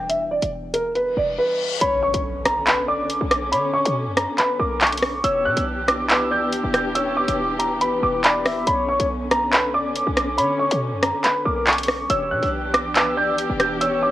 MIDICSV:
0, 0, Header, 1, 9, 480
1, 0, Start_track
1, 0, Key_signature, 2, "minor"
1, 0, Tempo, 428571
1, 110, Time_signature, 4, 2, 24, 8
1, 15807, End_track
2, 0, Start_track
2, 0, Title_t, "Grand piano"
2, 0, Program_c, 0, 0
2, 105, Note_on_c, 0, 76, 80
2, 303, Note_off_c, 0, 76, 0
2, 350, Note_on_c, 0, 74, 77
2, 545, Note_off_c, 0, 74, 0
2, 825, Note_on_c, 0, 70, 76
2, 1023, Note_off_c, 0, 70, 0
2, 1068, Note_on_c, 0, 71, 88
2, 1264, Note_off_c, 0, 71, 0
2, 1314, Note_on_c, 0, 74, 81
2, 1508, Note_off_c, 0, 74, 0
2, 1550, Note_on_c, 0, 71, 85
2, 2001, Note_off_c, 0, 71, 0
2, 2030, Note_on_c, 0, 83, 86
2, 2225, Note_off_c, 0, 83, 0
2, 2270, Note_on_c, 0, 85, 80
2, 2465, Note_off_c, 0, 85, 0
2, 2748, Note_on_c, 0, 82, 88
2, 2944, Note_off_c, 0, 82, 0
2, 2992, Note_on_c, 0, 83, 83
2, 3186, Note_off_c, 0, 83, 0
2, 3230, Note_on_c, 0, 86, 77
2, 3681, Note_off_c, 0, 86, 0
2, 3707, Note_on_c, 0, 86, 79
2, 3904, Note_off_c, 0, 86, 0
2, 3942, Note_on_c, 0, 83, 82
2, 4141, Note_off_c, 0, 83, 0
2, 4184, Note_on_c, 0, 85, 80
2, 4382, Note_off_c, 0, 85, 0
2, 4668, Note_on_c, 0, 82, 70
2, 4864, Note_off_c, 0, 82, 0
2, 4908, Note_on_c, 0, 83, 89
2, 5104, Note_off_c, 0, 83, 0
2, 5147, Note_on_c, 0, 86, 78
2, 5343, Note_off_c, 0, 86, 0
2, 5391, Note_on_c, 0, 85, 85
2, 5842, Note_off_c, 0, 85, 0
2, 5869, Note_on_c, 0, 88, 88
2, 6065, Note_off_c, 0, 88, 0
2, 6109, Note_on_c, 0, 90, 81
2, 6305, Note_off_c, 0, 90, 0
2, 6586, Note_on_c, 0, 86, 92
2, 6783, Note_off_c, 0, 86, 0
2, 6831, Note_on_c, 0, 88, 77
2, 7026, Note_off_c, 0, 88, 0
2, 7074, Note_on_c, 0, 91, 82
2, 7523, Note_off_c, 0, 91, 0
2, 7553, Note_on_c, 0, 91, 82
2, 7747, Note_off_c, 0, 91, 0
2, 7786, Note_on_c, 0, 88, 79
2, 7983, Note_off_c, 0, 88, 0
2, 8029, Note_on_c, 0, 86, 81
2, 8225, Note_off_c, 0, 86, 0
2, 8505, Note_on_c, 0, 82, 79
2, 8702, Note_off_c, 0, 82, 0
2, 8748, Note_on_c, 0, 83, 90
2, 8944, Note_off_c, 0, 83, 0
2, 8995, Note_on_c, 0, 86, 83
2, 9188, Note_off_c, 0, 86, 0
2, 9230, Note_on_c, 0, 83, 84
2, 9681, Note_off_c, 0, 83, 0
2, 9710, Note_on_c, 0, 83, 85
2, 9906, Note_off_c, 0, 83, 0
2, 9951, Note_on_c, 0, 85, 77
2, 10146, Note_off_c, 0, 85, 0
2, 10428, Note_on_c, 0, 82, 91
2, 10624, Note_off_c, 0, 82, 0
2, 10672, Note_on_c, 0, 83, 82
2, 10867, Note_off_c, 0, 83, 0
2, 10910, Note_on_c, 0, 86, 80
2, 11361, Note_off_c, 0, 86, 0
2, 11387, Note_on_c, 0, 86, 79
2, 11584, Note_off_c, 0, 86, 0
2, 11622, Note_on_c, 0, 83, 88
2, 11821, Note_off_c, 0, 83, 0
2, 11865, Note_on_c, 0, 85, 82
2, 12062, Note_off_c, 0, 85, 0
2, 12349, Note_on_c, 0, 82, 71
2, 12545, Note_off_c, 0, 82, 0
2, 12588, Note_on_c, 0, 83, 89
2, 12784, Note_off_c, 0, 83, 0
2, 12827, Note_on_c, 0, 86, 77
2, 13024, Note_off_c, 0, 86, 0
2, 13073, Note_on_c, 0, 85, 84
2, 13522, Note_off_c, 0, 85, 0
2, 13551, Note_on_c, 0, 88, 88
2, 13746, Note_off_c, 0, 88, 0
2, 13789, Note_on_c, 0, 90, 80
2, 13985, Note_off_c, 0, 90, 0
2, 14265, Note_on_c, 0, 86, 89
2, 14463, Note_off_c, 0, 86, 0
2, 14510, Note_on_c, 0, 88, 80
2, 14705, Note_off_c, 0, 88, 0
2, 14754, Note_on_c, 0, 91, 81
2, 15203, Note_off_c, 0, 91, 0
2, 15232, Note_on_c, 0, 91, 86
2, 15427, Note_off_c, 0, 91, 0
2, 15466, Note_on_c, 0, 88, 80
2, 15663, Note_off_c, 0, 88, 0
2, 15710, Note_on_c, 0, 86, 84
2, 15807, Note_off_c, 0, 86, 0
2, 15807, End_track
3, 0, Start_track
3, 0, Title_t, "Soft synth lead"
3, 0, Program_c, 1, 80
3, 2030, Note_on_c, 1, 73, 116
3, 2481, Note_off_c, 1, 73, 0
3, 2985, Note_on_c, 1, 71, 90
3, 3215, Note_off_c, 1, 71, 0
3, 3225, Note_on_c, 1, 74, 80
3, 3455, Note_off_c, 1, 74, 0
3, 3951, Note_on_c, 1, 73, 121
3, 4401, Note_off_c, 1, 73, 0
3, 4904, Note_on_c, 1, 71, 84
3, 5135, Note_off_c, 1, 71, 0
3, 5147, Note_on_c, 1, 70, 82
3, 5376, Note_off_c, 1, 70, 0
3, 5866, Note_on_c, 1, 73, 104
3, 6319, Note_off_c, 1, 73, 0
3, 6831, Note_on_c, 1, 71, 89
3, 7058, Note_off_c, 1, 71, 0
3, 7067, Note_on_c, 1, 74, 76
3, 7296, Note_off_c, 1, 74, 0
3, 7789, Note_on_c, 1, 73, 111
3, 8240, Note_off_c, 1, 73, 0
3, 8751, Note_on_c, 1, 71, 76
3, 9201, Note_off_c, 1, 71, 0
3, 9228, Note_on_c, 1, 74, 93
3, 9457, Note_off_c, 1, 74, 0
3, 9465, Note_on_c, 1, 76, 81
3, 9695, Note_off_c, 1, 76, 0
3, 9710, Note_on_c, 1, 73, 111
3, 10161, Note_off_c, 1, 73, 0
3, 10666, Note_on_c, 1, 71, 88
3, 10896, Note_off_c, 1, 71, 0
3, 10907, Note_on_c, 1, 74, 81
3, 11136, Note_off_c, 1, 74, 0
3, 11632, Note_on_c, 1, 73, 115
3, 12082, Note_off_c, 1, 73, 0
3, 12585, Note_on_c, 1, 71, 84
3, 12815, Note_off_c, 1, 71, 0
3, 12828, Note_on_c, 1, 70, 83
3, 13056, Note_off_c, 1, 70, 0
3, 13546, Note_on_c, 1, 73, 107
3, 13999, Note_off_c, 1, 73, 0
3, 14511, Note_on_c, 1, 71, 86
3, 14738, Note_off_c, 1, 71, 0
3, 14746, Note_on_c, 1, 74, 76
3, 14976, Note_off_c, 1, 74, 0
3, 15469, Note_on_c, 1, 73, 109
3, 15807, Note_off_c, 1, 73, 0
3, 15807, End_track
4, 0, Start_track
4, 0, Title_t, "String section"
4, 0, Program_c, 2, 48
4, 2028, Note_on_c, 2, 61, 97
4, 2029, Note_on_c, 2, 50, 88
4, 2029, Note_on_c, 2, 59, 81
4, 5830, Note_off_c, 2, 61, 0
4, 5831, Note_off_c, 2, 50, 0
4, 5869, Note_on_c, 2, 52, 91
4, 5869, Note_on_c, 2, 62, 82
4, 5869, Note_on_c, 2, 67, 100
4, 9671, Note_off_c, 2, 52, 0
4, 9671, Note_off_c, 2, 62, 0
4, 9671, Note_off_c, 2, 67, 0
4, 9709, Note_on_c, 2, 50, 90
4, 9709, Note_on_c, 2, 61, 97
4, 13504, Note_off_c, 2, 59, 0
4, 13511, Note_off_c, 2, 50, 0
4, 13511, Note_off_c, 2, 61, 0
4, 13550, Note_on_c, 2, 52, 87
4, 13550, Note_on_c, 2, 59, 83
4, 13550, Note_on_c, 2, 62, 82
4, 13550, Note_on_c, 2, 67, 102
4, 15807, Note_off_c, 2, 52, 0
4, 15807, Note_off_c, 2, 59, 0
4, 15807, Note_off_c, 2, 62, 0
4, 15807, Note_off_c, 2, 67, 0
4, 15807, End_track
5, 0, Start_track
5, 0, Title_t, "Synth keys"
5, 0, Program_c, 3, 88
5, 0, Control_c, 3, 64, 127
5, 0, Note_on_c, 3, 52, 72
5, 0, Note_on_c, 3, 55, 59
5, 0, Note_on_c, 3, 59, 60
5, 0, Note_on_c, 3, 62, 75
5, 1955, Note_off_c, 3, 52, 0
5, 1975, Note_off_c, 3, 55, 0
5, 1995, Note_off_c, 3, 59, 0
5, 2015, Note_off_c, 3, 62, 0
5, 2045, Control_c, 3, 64, 0
5, 15807, End_track
6, 0, Start_track
6, 0, Title_t, "808-style bass"
6, 0, Program_c, 4, 38
6, 0, Note_on_c, 4, 28, 103
6, 447, Note_off_c, 4, 28, 0
6, 476, Note_on_c, 4, 28, 107
6, 1069, Note_on_c, 4, 30, 101
6, 1086, Note_off_c, 4, 28, 0
6, 1196, Note_on_c, 4, 28, 101
6, 1213, Note_off_c, 4, 30, 0
6, 1303, Note_off_c, 4, 28, 0
6, 1309, Note_on_c, 4, 28, 102
6, 1549, Note_off_c, 4, 28, 0
6, 2029, Note_on_c, 4, 35, 105
6, 2269, Note_on_c, 4, 34, 103
6, 2286, Note_off_c, 4, 35, 0
6, 2390, Note_off_c, 4, 34, 0
6, 2396, Note_on_c, 4, 35, 103
6, 3551, Note_off_c, 4, 35, 0
6, 3596, Note_on_c, 4, 35, 108
6, 3949, Note_on_c, 4, 50, 95
6, 3966, Note_off_c, 4, 35, 0
6, 4298, Note_off_c, 4, 50, 0
6, 4316, Note_on_c, 4, 47, 108
6, 4556, Note_on_c, 4, 42, 103
6, 4572, Note_off_c, 4, 47, 0
6, 4784, Note_off_c, 4, 42, 0
6, 5149, Note_on_c, 4, 35, 110
6, 5840, Note_off_c, 4, 35, 0
6, 5869, Note_on_c, 4, 28, 106
6, 6109, Note_on_c, 4, 47, 104
6, 6126, Note_off_c, 4, 28, 0
6, 6230, Note_off_c, 4, 47, 0
6, 6237, Note_on_c, 4, 35, 107
6, 7392, Note_off_c, 4, 35, 0
6, 7436, Note_on_c, 4, 28, 107
6, 8128, Note_off_c, 4, 28, 0
6, 8156, Note_on_c, 4, 28, 107
6, 8749, Note_on_c, 4, 30, 100
6, 8766, Note_off_c, 4, 28, 0
6, 8876, Note_on_c, 4, 28, 99
6, 8893, Note_off_c, 4, 30, 0
6, 8983, Note_off_c, 4, 28, 0
6, 8989, Note_on_c, 4, 28, 104
6, 9469, Note_on_c, 4, 26, 99
6, 9486, Note_off_c, 4, 28, 0
6, 9597, Note_on_c, 4, 28, 104
6, 9613, Note_off_c, 4, 26, 0
6, 9704, Note_off_c, 4, 28, 0
6, 9709, Note_on_c, 4, 35, 107
6, 9949, Note_on_c, 4, 34, 102
6, 9966, Note_off_c, 4, 35, 0
6, 10070, Note_off_c, 4, 34, 0
6, 10077, Note_on_c, 4, 35, 106
6, 11232, Note_off_c, 4, 35, 0
6, 11277, Note_on_c, 4, 35, 109
6, 11629, Note_on_c, 4, 50, 100
6, 11646, Note_off_c, 4, 35, 0
6, 11978, Note_off_c, 4, 50, 0
6, 11996, Note_on_c, 4, 47, 109
6, 12236, Note_on_c, 4, 42, 99
6, 12253, Note_off_c, 4, 47, 0
6, 12464, Note_off_c, 4, 42, 0
6, 12829, Note_on_c, 4, 35, 104
6, 13521, Note_off_c, 4, 35, 0
6, 13550, Note_on_c, 4, 28, 106
6, 13790, Note_on_c, 4, 47, 104
6, 13807, Note_off_c, 4, 28, 0
6, 13910, Note_off_c, 4, 47, 0
6, 13917, Note_on_c, 4, 35, 105
6, 15072, Note_off_c, 4, 35, 0
6, 15116, Note_on_c, 4, 28, 103
6, 15807, Note_off_c, 4, 28, 0
6, 15807, End_track
7, 0, Start_track
7, 0, Title_t, "Impact"
7, 0, Program_c, 5, 103
7, 2029, Note_on_c, 5, 60, 87
7, 3949, Note_off_c, 5, 60, 0
7, 15807, End_track
8, 0, Start_track
8, 0, Title_t, "Reverse cymbal"
8, 0, Program_c, 6, 119
8, 1069, Note_on_c, 6, 60, 83
8, 2029, Note_off_c, 6, 60, 0
8, 15807, End_track
9, 0, Start_track
9, 0, Title_t, "Drums"
9, 109, Note_on_c, 9, 42, 98
9, 221, Note_off_c, 9, 42, 0
9, 476, Note_on_c, 9, 42, 75
9, 588, Note_off_c, 9, 42, 0
9, 829, Note_on_c, 9, 42, 93
9, 941, Note_off_c, 9, 42, 0
9, 1069, Note_on_c, 9, 42, 72
9, 1181, Note_off_c, 9, 42, 0
9, 2029, Note_on_c, 9, 42, 101
9, 2141, Note_off_c, 9, 42, 0
9, 2397, Note_on_c, 9, 42, 77
9, 2509, Note_off_c, 9, 42, 0
9, 2750, Note_on_c, 9, 37, 103
9, 2750, Note_on_c, 9, 42, 95
9, 2862, Note_off_c, 9, 37, 0
9, 2862, Note_off_c, 9, 42, 0
9, 2990, Note_on_c, 9, 42, 70
9, 2991, Note_on_c, 9, 39, 108
9, 3102, Note_off_c, 9, 42, 0
9, 3103, Note_off_c, 9, 39, 0
9, 3470, Note_on_c, 9, 42, 89
9, 3582, Note_off_c, 9, 42, 0
9, 3709, Note_on_c, 9, 37, 103
9, 3709, Note_on_c, 9, 42, 81
9, 3821, Note_off_c, 9, 37, 0
9, 3821, Note_off_c, 9, 42, 0
9, 3949, Note_on_c, 9, 42, 97
9, 4061, Note_off_c, 9, 42, 0
9, 4316, Note_on_c, 9, 42, 75
9, 4428, Note_off_c, 9, 42, 0
9, 4669, Note_on_c, 9, 37, 101
9, 4669, Note_on_c, 9, 42, 92
9, 4781, Note_off_c, 9, 37, 0
9, 4781, Note_off_c, 9, 42, 0
9, 4909, Note_on_c, 9, 42, 74
9, 4910, Note_on_c, 9, 39, 62
9, 5021, Note_off_c, 9, 42, 0
9, 5022, Note_off_c, 9, 39, 0
9, 5389, Note_on_c, 9, 39, 127
9, 5389, Note_on_c, 9, 42, 53
9, 5452, Note_off_c, 9, 42, 0
9, 5452, Note_on_c, 9, 42, 63
9, 5501, Note_off_c, 9, 39, 0
9, 5516, Note_off_c, 9, 42, 0
9, 5516, Note_on_c, 9, 42, 73
9, 5573, Note_off_c, 9, 42, 0
9, 5573, Note_on_c, 9, 42, 89
9, 5628, Note_on_c, 9, 37, 102
9, 5629, Note_on_c, 9, 46, 60
9, 5685, Note_off_c, 9, 42, 0
9, 5740, Note_off_c, 9, 37, 0
9, 5741, Note_off_c, 9, 46, 0
9, 5869, Note_on_c, 9, 42, 98
9, 5981, Note_off_c, 9, 42, 0
9, 6237, Note_on_c, 9, 42, 78
9, 6349, Note_off_c, 9, 42, 0
9, 6589, Note_on_c, 9, 37, 106
9, 6589, Note_on_c, 9, 42, 94
9, 6701, Note_off_c, 9, 37, 0
9, 6701, Note_off_c, 9, 42, 0
9, 6829, Note_on_c, 9, 42, 69
9, 6830, Note_on_c, 9, 39, 109
9, 6941, Note_off_c, 9, 42, 0
9, 6942, Note_off_c, 9, 39, 0
9, 7310, Note_on_c, 9, 42, 92
9, 7422, Note_off_c, 9, 42, 0
9, 7549, Note_on_c, 9, 37, 101
9, 7550, Note_on_c, 9, 42, 79
9, 7661, Note_off_c, 9, 37, 0
9, 7662, Note_off_c, 9, 42, 0
9, 7789, Note_on_c, 9, 42, 101
9, 7901, Note_off_c, 9, 42, 0
9, 8157, Note_on_c, 9, 42, 77
9, 8269, Note_off_c, 9, 42, 0
9, 8509, Note_on_c, 9, 42, 94
9, 8621, Note_off_c, 9, 42, 0
9, 8749, Note_on_c, 9, 42, 75
9, 8861, Note_off_c, 9, 42, 0
9, 9230, Note_on_c, 9, 39, 120
9, 9230, Note_on_c, 9, 42, 84
9, 9342, Note_off_c, 9, 39, 0
9, 9342, Note_off_c, 9, 42, 0
9, 9470, Note_on_c, 9, 37, 99
9, 9470, Note_on_c, 9, 46, 56
9, 9582, Note_off_c, 9, 37, 0
9, 9582, Note_off_c, 9, 46, 0
9, 9710, Note_on_c, 9, 42, 101
9, 9822, Note_off_c, 9, 42, 0
9, 10077, Note_on_c, 9, 42, 76
9, 10189, Note_off_c, 9, 42, 0
9, 10430, Note_on_c, 9, 37, 105
9, 10430, Note_on_c, 9, 42, 90
9, 10542, Note_off_c, 9, 37, 0
9, 10542, Note_off_c, 9, 42, 0
9, 10670, Note_on_c, 9, 42, 69
9, 10671, Note_on_c, 9, 39, 105
9, 10782, Note_off_c, 9, 42, 0
9, 10783, Note_off_c, 9, 39, 0
9, 11150, Note_on_c, 9, 42, 90
9, 11262, Note_off_c, 9, 42, 0
9, 11389, Note_on_c, 9, 37, 102
9, 11390, Note_on_c, 9, 42, 81
9, 11501, Note_off_c, 9, 37, 0
9, 11502, Note_off_c, 9, 42, 0
9, 11630, Note_on_c, 9, 42, 96
9, 11742, Note_off_c, 9, 42, 0
9, 11997, Note_on_c, 9, 42, 80
9, 12109, Note_off_c, 9, 42, 0
9, 12349, Note_on_c, 9, 37, 101
9, 12349, Note_on_c, 9, 42, 96
9, 12461, Note_off_c, 9, 37, 0
9, 12461, Note_off_c, 9, 42, 0
9, 12589, Note_on_c, 9, 42, 75
9, 12590, Note_on_c, 9, 39, 64
9, 12701, Note_off_c, 9, 42, 0
9, 12702, Note_off_c, 9, 39, 0
9, 13069, Note_on_c, 9, 39, 126
9, 13069, Note_on_c, 9, 42, 51
9, 13133, Note_off_c, 9, 42, 0
9, 13133, Note_on_c, 9, 42, 65
9, 13181, Note_off_c, 9, 39, 0
9, 13197, Note_off_c, 9, 42, 0
9, 13197, Note_on_c, 9, 42, 74
9, 13253, Note_off_c, 9, 42, 0
9, 13253, Note_on_c, 9, 42, 86
9, 13309, Note_on_c, 9, 37, 101
9, 13365, Note_off_c, 9, 42, 0
9, 13421, Note_off_c, 9, 37, 0
9, 13550, Note_on_c, 9, 42, 102
9, 13662, Note_off_c, 9, 42, 0
9, 13917, Note_on_c, 9, 42, 80
9, 14029, Note_off_c, 9, 42, 0
9, 14269, Note_on_c, 9, 37, 102
9, 14269, Note_on_c, 9, 42, 93
9, 14381, Note_off_c, 9, 37, 0
9, 14381, Note_off_c, 9, 42, 0
9, 14510, Note_on_c, 9, 42, 71
9, 14511, Note_on_c, 9, 39, 108
9, 14622, Note_off_c, 9, 42, 0
9, 14623, Note_off_c, 9, 39, 0
9, 14990, Note_on_c, 9, 42, 89
9, 15102, Note_off_c, 9, 42, 0
9, 15229, Note_on_c, 9, 37, 102
9, 15230, Note_on_c, 9, 42, 79
9, 15341, Note_off_c, 9, 37, 0
9, 15342, Note_off_c, 9, 42, 0
9, 15469, Note_on_c, 9, 42, 95
9, 15581, Note_off_c, 9, 42, 0
9, 15807, End_track
0, 0, End_of_file